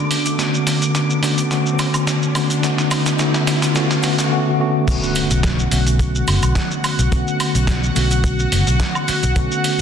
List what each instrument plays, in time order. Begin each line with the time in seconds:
Already playing: tine electric piano D3 A3 B3 C#4 F#4, analog synth pad D3 D6, riser
0.11 open hi-hat, cabasa
0.25 closed hi-hat, cabasa, shaker
0.38 tine electric piano D3 A3 B3 C#4 F#4, snare, closed hi-hat, cabasa, shaker
0.54 shaker
0.67 snare, open hi-hat, cabasa
0.82 closed hi-hat, cabasa, shaker
0.95 snare, closed hi-hat, cabasa, shaker
1.10 shaker
1.22 tine electric piano D3 A3 B3 C#4 F#4, snare, open hi-hat, cabasa
1.38 closed hi-hat, cabasa, shaker
1.50 tine electric piano D3 A3 B3 C#4 F#4, snare, closed hi-hat, cabasa, shaker
1.66 shaker
1.79 snare, open hi-hat, cabasa, high woodblock
1.94 closed hi-hat, cabasa, high woodblock, shaker
2.07 snare, closed hi-hat, cabasa, shaker
2.23 shaker
2.34 tine electric piano D3 A3 B3 C#4 F#4, snare, open hi-hat, cabasa, high woodblock
2.50 closed hi-hat, cabasa, shaker
2.62 tine electric piano D3 A3 B3 C#4 F#4, snare, closed hi-hat, cabasa, shaker
2.78 snare, shaker
2.91 snare, open hi-hat, cabasa, high woodblock
3.06 snare, closed hi-hat, cabasa, shaker
3.18 tine electric piano D3 A3 B3 C#4 F#4, snare, closed hi-hat, cabasa, shaker
3.34 snare, shaker
3.47 snare, open hi-hat, cabasa
3.62 snare, closed hi-hat, cabasa, shaker
3.75 tine electric piano D3 A3 B3 C#4 F#4, snare, closed hi-hat, cabasa, shaker
3.91 snare, shaker
4.03 tine electric piano D3 A3 B3 C#4 F#4, snare, open hi-hat, cabasa
4.18 snare, closed hi-hat, cabasa, shaker
4.31 tine electric piano D3 A3 B3 C#4 F#4
4.59 tine electric piano D3 A3 B3 C#4 F#4
4.87 fingered electric bass B1, tine electric piano D3 B3 C#4 F#4, analog synth pad F#4 F#5, kick, closed hi-hat, crash, impact, cabasa, shaker
5.03 shaker
5.15 open hi-hat, cabasa
5.30 fingered electric bass B1, closed hi-hat, cabasa, shaker
5.43 kick, snare, closed hi-hat, cabasa, shaker
5.59 shaker
5.71 fingered electric bass B1, tine electric piano D3 A3 B3 C#4 F#4, open hi-hat, cabasa
5.87 closed hi-hat, cabasa, shaker
5.99 kick, closed hi-hat, cabasa, shaker
6.15 shaker
6.27 fingered electric bass F#1, open hi-hat, cabasa, high woodblock
6.42 fingered electric bass B1, closed hi-hat, cabasa, high woodblock, shaker
6.55 kick, snare, closed hi-hat, cabasa, shaker
6.71 shaker
6.84 open hi-hat, cabasa, high woodblock
6.99 fingered electric bass B1, closed hi-hat, cabasa, shaker
7.11 fingered electric bass B1, tine electric piano D3 A3 B3 C#4 F#4, kick, closed hi-hat, cabasa, shaker
7.28 shaker
7.40 open hi-hat, cabasa, high woodblock
7.55 fingered electric bass B1, closed hi-hat, cabasa, shaker
7.67 kick, snare, closed hi-hat, cabasa, shaker
7.83 shaker
7.95 fingered electric bass B1, tine electric piano D3 A3 B3 C#4 F#4, open hi-hat, cabasa
8.10 closed hi-hat, cabasa, shaker
8.24 kick, closed hi-hat, cabasa, shaker
8.39 shaker
8.52 fingered electric bass F#1, open hi-hat, cabasa
8.67 fingered electric bass B1, closed hi-hat, cabasa, shaker
8.80 kick, snare, closed hi-hat, cabasa, shaker
8.95 high woodblock, shaker
9.08 muted fingered electric bass stroke, open hi-hat, cabasa
9.23 fingered electric bass B1, closed hi-hat, cabasa, shaker
9.35 fingered electric bass B1, tine electric piano D3 A3 B3 C#4 F#4, kick, closed hi-hat, cabasa, shaker
9.52 shaker
9.64 open hi-hat, cabasa